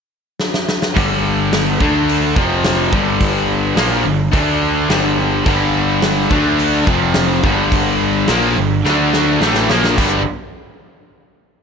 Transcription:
0.40 snare
0.54 snare
0.69 snare
0.82 snare
0.96 picked electric bass G1, overdriven electric guitar G2 D3 G3, kick, open hi-hat
1.53 snare, open hi-hat
1.80 picked electric bass D2, overdriven electric guitar D3 A3 D4, kick
2.09 open hi-hat
2.36 picked electric bass F1, overdriven electric guitar F2 C3 F3, kick
2.64 snare, open hi-hat
2.92 picked electric bass G1, overdriven electric guitar G2 D3 G3, kick
3.21 kick, open hi-hat
3.76 picked electric bass A#1, overdriven electric guitar A#2 F3 A#3, snare, open hi-hat
4.05 picked electric bass G1, overdriven electric guitar G2 D3
4.32 picked electric bass D2, overdriven electric guitar D3 A3 D4, kick, open hi-hat
4.89 picked electric bass G1, overdriven electric guitar G2 D3 G3, snare, open hi-hat
5.46 picked electric bass G1, overdriven electric guitar G2 D3 G3, kick, open hi-hat
6.02 snare, open hi-hat
6.30 picked electric bass D2, overdriven electric guitar D3 A3 D4, kick
6.59 open hi-hat
6.87 picked electric bass F1, overdriven electric guitar F2 C3 F3, kick
7.14 snare, open hi-hat
7.43 picked electric bass G1, overdriven electric guitar G2 D3 G3, kick
7.72 kick, open hi-hat
8.28 picked electric bass A#1, overdriven electric guitar A#2 F3 A#3, snare, open hi-hat
8.56 picked electric bass G1, overdriven electric guitar G2 D3
8.84 picked electric bass D2, overdriven electric guitar D3 A3 D4, snare
9.13 snare
9.41 picked electric bass A1, overdriven electric guitar A2 E3 A3, snare
9.54 snare
9.70 picked electric bass A#1, overdriven electric guitar A#2 F3 A#3, snare
9.84 snare
9.97 picked electric bass G1, overdriven electric guitar G2 D3 G3, kick, crash

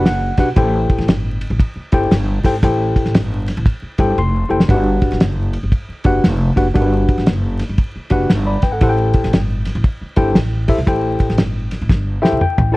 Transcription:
Already playing: upright bass F#1
0.06 tine electric piano F#5, snare, ride
0.37 upright bass B1, tine electric piano D4 F#4 G4 B4 F#5, kick, snare, ride
0.56 upright bass A1, tine electric piano A2 E4 G4 A4 C5 G5, kick, ride
0.90 kick, ride
0.98 upright bass A1, snare
1.08 upright bass G1, snare, ride
1.41 ride
1.50 upright bass A1
1.60 kick, ride
1.76 muted upright bass stroke
1.92 upright bass G1, tine electric piano E4 G4 A4 C5 G5, kick, ride
2.11 upright bass G1, snare, ride
2.44 upright bass G#1, tine electric piano E4 G4 A4 C5 G5, kick, snare, open hi-hat, ride
2.63 upright bass A1, tine electric piano A2 E4 G4 A4 C5 G5, kick, hi-hat pedal, ride
2.96 kick, ride
3.06 upright bass A1, snare
3.15 upright bass G1, snare, ride
3.48 snare, ride
3.57 upright bass A1
3.66 kick, ride
3.82 muted upright bass stroke
3.98 upright bass G1, tine electric piano E4 G4 A4 C5 G5, kick, ride
4.18 upright bass F1, tine electric piano C6
4.49 upright bass F#1, tine electric piano E4 G4 A4 C5 G5
4.60 snare
4.68 upright bass G1, tine electric piano G2 D4 F#4 G4 B4 F#5, kick, ride
5.02 kick, ride
5.12 upright bass G1, snare
5.20 upright bass F#1, snare, ride
5.53 ride
5.63 upright bass G1
5.72 kick, ride
5.89 muted upright bass stroke
6.04 upright bass F#1, tine electric piano D4 F#4 G4 B4 F#5, kick, ride
6.24 upright bass F1, snare, ride
6.56 upright bass F#1, tine electric piano D4 F#4 G4 B4 F#5, kick, ride
6.74 upright bass G1, tine electric piano G2 D4 F#4 G4 A#4 F#5, kick, ride
6.82 tine electric piano B4
7.09 kick, ride
7.18 upright bass G1, snare
7.26 upright bass F#1, snare, ride
7.59 snare, ride
7.69 upright bass G1
7.78 kick, ride
7.96 muted upright bass stroke
8.10 upright bass F#1, tine electric piano D4 F#4 G4 B4 F#5, kick, ride
8.30 upright bass G1, snare, ride
8.47 tine electric piano D5 B5
8.62 upright bass G#1, tine electric piano B4 G5, kick, snare, ride
8.72 tine electric piano A4 F#5
8.81 upright bass A1, tine electric piano A2 E4 G4 A4 C5 F#5, kick, ride
8.89 tine electric piano G5
9.14 kick, ride
9.24 upright bass A1, snare
9.33 upright bass G1, snare, ride
9.65 snare, ride
9.75 upright bass A1
9.84 kick, ride
10.01 muted upright bass stroke
10.16 upright bass G1, tine electric piano E4 G4 A4 C5 G5, kick, ride
10.35 upright bass A1, snare, ride
10.68 tine electric piano E4 G4 A4 C5 E5, kick, open hi-hat, ride
10.78 upright bass B1
10.86 upright bass A1, tine electric piano A2 E4 G4 A4 C5 G5, kick, hi-hat pedal, ride
11.20 kick, ride
11.30 upright bass A1, snare
11.38 upright bass G1, snare, ride
11.71 snare, ride
11.82 upright bass A1
11.89 upright bass G1, kick, snare
12.22 tine electric piano E4 G4 A4 C5 E5 G5, muted upright bass stroke, snare
12.32 upright bass B1
12.41 tine electric piano G5, muted upright bass stroke, mid tom
12.58 upright bass A1, floor tom
12.72 tine electric piano E4 G4 A4 A5

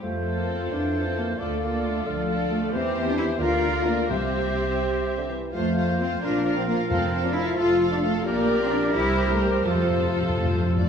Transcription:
0.01 double bass section F2, bassoon F3, french horn section A3, cello section A3, clarinet A4, oboe C5, flute section F5
0.25 viola section F4, violin section A4 C5
0.36 french horn section A#3, cello section A#3
0.48 cello section C4, french horn section C4
0.71 double bass section F2, bassoon E3, cello section D4, french horn section D4, oboe C5
0.94 viola section F4, violin section A4 C5
1.07 french horn section C4, cello section C4
1.17 cello section A#3, french horn section A#3
1.38 double bass section D2, bassoon D3, french horn section A3, cello section A3, viola section F4, clarinet A4, violin section A4 D5, oboe D5, flute section F5
1.61 cello section A#3, french horn section A#3, viola section F4, violin section A4 D5
1.83 french horn section A3, cello section A3
2.06 double bass section D2, bassoon D3, cello section F3, french horn section F3, clarinet A4, flute section D5, oboe F5
2.28 viola section F4, violin section A4 D5
2.50 french horn section A3, cello section A3
2.72 double bass section E2, bassoon E3, french horn section C4, cello section C4, viola section G4, clarinet G4, violin section C5, oboe C5, flute section E5
3.07 french horn section D4, cello section D4
3.17 french horn section E4, cello section E4
3.40 double bass section D2, bassoon D3, french horn section F4, clarinet F4, cello section F4, viola section F4, violin section A#4 D5, oboe A#4, flute section F5
3.86 french horn section A#3, cello section A#3
4.09 double bass section C2, bassoon C3, timpani C3, french horn section C4, cello section C4, viola section G4, clarinet G4, violin section C5 E5, oboe C5, flute section E5
4.81 bassoon C3
5.18 bassoon D3
5.28 bassoon E3
5.53 double bass section F2, bassoon F3, french horn section A3, cello section A3, viola section F4, clarinet F4, oboe C5, violin section C5 F5, flute section F5
5.77 viola section F4, violin section C5 F5
5.88 french horn section A#3, cello section A#3
5.99 french horn section C4, cello section C4, viola section F4, violin section C5 F5
6.22 double bass section A#1, cello section D4, french horn section D4, viola section F4, violin section A#4 F5, oboe A#4
6.45 viola section F4, violin section A#4 F5
6.58 cello section C4, french horn section C4
6.67 cello section A#3, french horn section A#3, viola section F4, violin section A#4 F5
6.90 double bass section F1, timpani F2, cello section C4, french horn section C4, viola section F4, violin section A4 F5
7.12 viola section F4, violin section A4 F5
7.24 french horn section D4, cello section D4
7.35 cello section E4, french horn section E4, viola section F4, violin section A4 F5
7.57 double bass section F1, cello section F4, viola section F4, french horn section F4, violin section A4 F5, oboe A4
7.81 viola section F4, violin section A4 F5
7.92 french horn section D4, cello section D4
8.03 cello section A3, french horn section A3, viola section F4, violin section A4 F5
8.25 double bass section A#1, bassoon A#2, cello section A#3, french horn section A#3, viola section G4, clarinet G4, oboe A#4, violin section A#4 D5, flute section D5
8.58 french horn section C4, cello section C4
8.69 french horn section D4, cello section D4
8.93 double bass section C2, bassoon C3, french horn section E4, cello section E4, viola section G4, violin section A#4 C5, flute section C5
9.28 french horn section A3, cello section A3
9.41 french horn section G3, cello section G3
9.65 timpani F2, double bass section F2, french horn section F3, cello section F3, clarinet F4, viola section F4, oboe A4, violin section A4 C5
9.74 timpani F2
9.90 timpani F2
9.98 timpani F2
10.06 timpani F2
10.13 timpani F2
10.21 timpani F2
10.29 timpani F2
10.36 timpani F2, violin section C5
10.45 timpani F2
10.53 timpani F2
10.60 timpani F2
10.69 timpani F2
10.76 timpani F2, violin section D5
10.84 timpani F2

